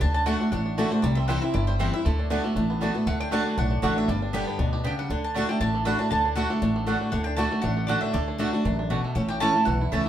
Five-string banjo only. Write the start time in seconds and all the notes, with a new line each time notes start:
0.01 D4
0.14 D4
0.26 A3
0.41 D4
0.52 D4
0.66 D4
0.78 A3
0.91 D4
1.03 G3
1.17 C4
1.29 G3
1.42 C4
1.55 E4
1.68 G3
1.80 C4
1.94 E4
2.05 A3
2.19 D4
2.30 D4
2.44 A3
2.56 D4
2.70 B3
2.82 D4
2.95 B3
3.07 A3
3.20 D4
3.32 D4
3.46 D4
3.58 D4
3.71 D4
3.83 D4
3.96 D4
4.08 G3
4.22 D4
4.34 G3
4.47 B3
4.59 D4
4.73 G4
4.85 D4
4.99 G3
5.11 D4
5.36 D4
5.49 A3
5.61 D4
5.75 A3
5.87 D4
6.00 D4
6.12 D4
6.25 D4
6.37 D4
6.50 A3
6.62 D4
6.76 A3
6.87 D4
7.01 D4
7.12 D4
7.26 D4
7.38 D4
7.52 A3
7.64 D4
7.77 A3
7.89 D4
8.03 D4
8.14 A3
8.28 D4
8.40 A3
8.53 D4
8.65 D4
8.79 D4
8.91 D4
9.04 A3
9.16 C#4
9.30 G4
9.41 E4
9.55 A3
9.67 E3
9.81 E4
9.93 C#4